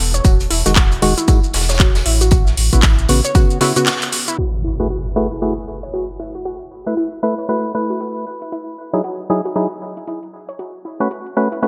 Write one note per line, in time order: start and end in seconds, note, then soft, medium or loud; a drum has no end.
0.00 0.20 E1 medium
0.14 0.18 C#5 medium
0.14 closed hi-hat medium
0.14 shaker medium
0.25 0.46 E1 loud
0.25 0.30 F#4 medium
0.25 kick loud
0.25 closed hi-hat medium
0.25 tambourine medium
0.25 shaker medium
0.40 closed hi-hat soft
0.40 shaker soft
0.50 0.63 E1 medium
0.50 0.56 E4 medium
0.50 open hi-hat loud
0.50 tambourine medium
0.66 0.99 E1 loud
0.66 0.74 D#3 medium
0.66 0.74 G#3 medium
0.66 0.68 F#4 medium
0.66 0.74 F#4 medium
0.66 closed hi-hat medium
0.66 closed hi-hat soft
0.66 shaker medium
0.76 0.82 F#4 medium
0.76 kick loud
0.76 snare loud
0.76 clap loud
0.76 closed hi-hat medium
0.76 tambourine medium
0.76 shaker medium
0.92 closed hi-hat soft
0.92 shaker soft
1.02 1.14 E1 medium
1.02 1.14 D#3 loud
1.02 1.14 G#3 medium
1.02 1.14 F#4 loud
1.02 open hi-hat medium
1.02 tambourine medium
1.18 1.23 E4 medium
1.18 closed hi-hat medium
1.18 shaker medium
1.28 1.40 D#3 medium
1.28 1.40 G#3 medium
1.28 1.31 E4 medium
1.28 1.40 F#4 medium
1.28 kick loud
1.28 closed hi-hat medium
1.28 tambourine medium
1.28 shaker medium
1.44 shaker soft
1.53 2.02 E1 medium
1.53 snare medium
1.53 open hi-hat loud
1.53 tambourine medium
1.61 snare medium
1.61 tambourine medium
1.69 1.73 C#5 medium
1.69 snare medium
1.69 closed hi-hat medium
1.69 tambourine medium
1.69 shaker medium
1.74 snare medium
1.74 tambourine medium
1.79 1.85 F#4 medium
1.79 kick loud
1.79 clap loud
1.79 closed hi-hat medium
1.79 shaker medium
1.95 snare loud
1.95 closed hi-hat soft
1.95 tambourine medium
1.95 shaker soft
2.06 2.54 A1 medium
2.06 2.11 E4 medium
2.06 open hi-hat loud
2.21 2.23 F#4 medium
2.21 closed hi-hat medium
2.21 tambourine medium
2.21 shaker medium
2.31 2.37 F#4 medium
2.31 kick loud
2.31 closed hi-hat medium
2.31 tambourine medium
2.31 shaker medium
2.47 snare soft
2.47 shaker soft
2.57 2.70 A1 medium
2.57 open hi-hat loud
2.57 tambourine medium
2.73 3.06 A1 loud
2.73 2.81 C#3 medium
2.73 2.81 B3 medium
2.73 2.78 E4 medium
2.73 2.81 F#4 medium
2.73 kick medium
2.73 closed hi-hat medium
2.73 shaker medium
2.83 2.87 E4 medium
2.83 kick loud
2.83 snare loud
2.83 clap loud
2.83 closed hi-hat medium
2.83 tambourine loud
2.83 shaker medium
2.99 closed hi-hat soft
2.99 shaker soft
3.09 3.21 A1 medium
3.09 3.21 C#3 loud
3.09 3.21 B3 medium
3.09 3.21 F#4 loud
3.09 open hi-hat loud
3.09 tambourine medium
3.25 3.28 C#5 medium
3.25 closed hi-hat medium
3.25 shaker medium
3.35 3.58 C#3 medium
3.35 3.58 B3 medium
3.35 3.41 F#4 medium
3.35 3.58 F#4 loud
3.35 kick loud
3.35 closed hi-hat medium
3.35 tambourine loud
3.35 shaker medium
3.50 closed hi-hat soft
3.50 shaker soft
3.61 3.72 C#3 loud
3.61 3.73 B3 medium
3.61 3.66 E4 medium
3.61 3.73 F#4 loud
3.61 snare loud
3.61 open hi-hat loud
3.61 tambourine medium
3.76 3.90 C#3 medium
3.76 3.90 B3 medium
3.76 3.79 F#4 medium
3.76 3.90 F#4 loud
3.76 closed hi-hat medium
3.76 closed hi-hat soft
3.76 shaker medium
3.86 3.92 F#4 medium
3.86 snare loud
3.86 clap loud
3.86 closed hi-hat medium
3.86 tambourine medium
3.86 shaker medium
4.02 clap soft
4.02 closed hi-hat soft
4.02 shaker soft
4.12 open hi-hat loud
4.12 tambourine medium
4.28 4.34 E4 medium
4.28 closed hi-hat medium
4.28 shaker medium
4.38 4.44 F#4 medium
4.38 impact medium
4.64 4.70 E4 medium
4.80 4.87 A3 medium
4.80 4.88 E4 medium
4.80 4.82 F#4 medium
4.80 4.88 F#4 medium
4.80 4.88 G#4 medium
4.80 4.88 B4 medium
4.80 closed hi-hat medium
4.90 4.96 F#4 medium
4.90 closed hi-hat medium
5.16 5.28 A3 loud
5.16 5.28 E4 medium
5.16 5.28 F#4 medium
5.16 5.28 G#4 medium
5.16 5.28 B4 loud
5.31 5.37 E4 medium
5.31 closed hi-hat soft
5.42 5.53 A3 medium
5.42 5.53 E4 medium
5.42 5.45 E4 medium
5.42 5.53 F#4 medium
5.42 5.53 G#4 medium
5.42 5.54 B4 medium
5.42 closed hi-hat medium
5.83 5.87 C#5 medium
5.83 closed hi-hat medium
5.94 5.99 F#4 medium
5.94 closed hi-hat medium
6.09 closed hi-hat soft
6.20 6.25 E4 medium
6.35 6.37 F#4 medium
6.35 closed hi-hat medium
6.45 6.51 F#4 medium
6.45 closed hi-hat medium
6.86 6.94 A3 medium
6.86 6.92 E4 medium
6.86 6.94 E4 medium
6.86 6.95 B4 medium
6.86 closed hi-hat medium
6.97 7.00 E4 medium
6.97 closed hi-hat medium
7.12 closed hi-hat soft
7.23 7.34 A3 medium
7.23 7.34 E4 medium
7.23 7.35 B4 loud
7.38 7.42 C#5 medium
7.38 closed hi-hat medium
7.49 7.72 A3 medium
7.49 7.72 E4 medium
7.49 7.54 F#4 medium
7.49 7.72 B4 loud
7.49 closed hi-hat medium
7.75 8.25 A3 medium
7.75 7.80 E4 medium
7.75 8.25 E4 medium
7.75 8.25 B4 medium
7.90 7.92 F#4 medium
7.90 closed hi-hat medium
8.01 8.06 F#4 medium
8.01 closed hi-hat medium
8.16 closed hi-hat soft
8.42 8.47 E4 medium
8.42 closed hi-hat soft
8.52 8.56 E4 medium
8.52 closed hi-hat medium
8.93 9.01 F#3 medium
8.93 9.01 D#4 medium
8.93 9.01 E4 medium
8.93 9.01 G#4 medium
8.93 8.97 C#5 medium
8.93 closed hi-hat medium
9.04 9.10 F#4 medium
9.04 closed hi-hat medium
9.30 9.41 F#3 medium
9.30 9.41 D#4 medium
9.30 9.35 E4 medium
9.30 9.41 E4 medium
9.30 9.41 G#4 loud
9.45 9.47 F#4 medium
9.45 closed hi-hat soft
9.56 9.67 F#3 medium
9.56 9.67 D#4 medium
9.56 9.67 E4 medium
9.56 9.61 F#4 medium
9.56 9.67 G#4 medium
9.56 closed hi-hat medium
9.97 10.03 E4 medium
9.97 closed hi-hat soft
10.07 10.11 E4 medium
10.07 closed hi-hat medium
10.23 closed hi-hat soft
10.49 10.52 C#5 medium
10.49 closed hi-hat soft
10.59 10.65 F#4 medium
10.59 closed hi-hat medium
10.85 10.91 E4 medium
11.00 11.08 A3 medium
11.00 11.08 C#4 medium
11.00 11.03 F#4 medium
11.00 11.08 F#4 medium
11.00 11.08 B4 medium
11.00 closed hi-hat medium
11.11 11.16 F#4 medium
11.11 closed hi-hat medium
11.26 closed hi-hat soft
11.37 11.48 A3 medium
11.37 11.48 C#4 medium
11.37 11.48 F#4 medium
11.37 11.48 B4 loud
11.52 11.58 E4 medium
11.52 closed hi-hat soft
11.62 11.68 A3 medium
11.62 11.68 C#4 medium
11.62 11.66 E4 medium
11.62 11.68 F#4 medium
11.62 11.68 B4 loud
11.62 closed hi-hat medium